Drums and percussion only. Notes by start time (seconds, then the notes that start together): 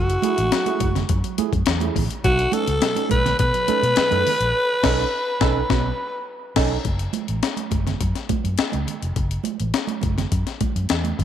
0.10 closed hi-hat
0.22 closed hi-hat, high conga
0.38 closed hi-hat
0.52 snare, closed hi-hat
0.66 closed hi-hat, high conga
0.80 kick, closed hi-hat, muted conga, high conga
0.95 snare, closed hi-hat, low conga
1.09 kick, closed hi-hat, muted conga
1.24 closed hi-hat
1.38 closed hi-hat, high conga
1.53 kick, closed hi-hat
1.66 snare, closed hi-hat
1.80 closed hi-hat, high conga
1.96 kick, open hi-hat, muted conga, low conga
2.11 closed hi-hat
2.24 kick, closed hi-hat, muted conga
2.39 closed hi-hat
2.52 closed hi-hat, muted conga, high conga
2.67 closed hi-hat
2.81 snare, closed hi-hat, muted conga
2.95 closed hi-hat, high conga
3.09 kick, closed hi-hat, high conga
3.26 snare, closed hi-hat, low conga
3.39 kick, closed hi-hat, muted conga
3.54 closed hi-hat
3.68 closed hi-hat, muted conga, high conga
3.84 closed hi-hat
3.96 snare, closed hi-hat
4.11 closed hi-hat, high conga
4.27 open hi-hat, muted conga, low conga
4.41 closed hi-hat
4.84 kick, snare, crash
5.41 kick, snare
5.70 kick, snare
6.56 kick, snare, crash
6.85 kick, closed hi-hat, muted conga
6.99 closed hi-hat
7.13 closed hi-hat, high conga
7.28 closed hi-hat
7.43 snare, closed hi-hat
7.57 closed hi-hat, high conga
7.71 kick, closed hi-hat, high conga
7.87 snare, closed hi-hat, low conga
8.01 kick, closed hi-hat, muted conga
8.15 snare, closed hi-hat
8.29 kick, closed hi-hat, muted conga, high conga
8.45 closed hi-hat
8.58 snare, closed hi-hat
8.72 closed hi-hat, high conga
8.87 closed hi-hat, low conga
9.03 closed hi-hat
9.16 kick, closed hi-hat, muted conga
9.31 closed hi-hat
9.44 closed hi-hat, high conga
9.60 closed hi-hat
9.74 snare, closed hi-hat
9.87 closed hi-hat, high conga
10.01 kick, closed hi-hat, muted conga, high conga
10.18 snare, closed hi-hat, low conga
10.32 kick, closed hi-hat
10.47 snare, closed hi-hat
10.61 kick, closed hi-hat, high conga
10.76 closed hi-hat
10.89 snare, closed hi-hat
11.04 closed hi-hat, high conga
11.19 kick, closed hi-hat, low conga